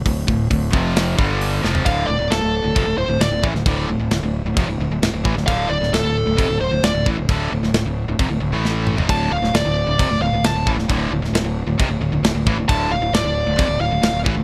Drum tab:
CC |----------------|x---x---x---x---|x---x---x---x---|x---x---x---x---|
HH |o---o---o---o---|----------------|----------------|----------------|
SD |--------o-----o-|----o-------o--o|----o-------o--o|---oo-------o---|
T2 |----------------|----------------|----------------|----------------|
FT |---------------o|----------------|----------------|----------------|
BD |o-o-o-o---o-----|o-------o-----o-|o-------o-----o-|o-------o-----o-|

CC |x---x---x-------|x---x---x---x---|x---x---x---x---|x---x---x---x---|
HH |----------------|----------------|----------------|----------------|
SD |---oo-------o---|---oo-------o--o|---oo-------o---|----o-------o---|
T2 |--------------o-|----------------|----------------|----------------|
FT |---------------o|----------------|----------------|----------------|
BD |o-------o-------|o-------o-----o-|o-------o-----o-|o-------o-----o-|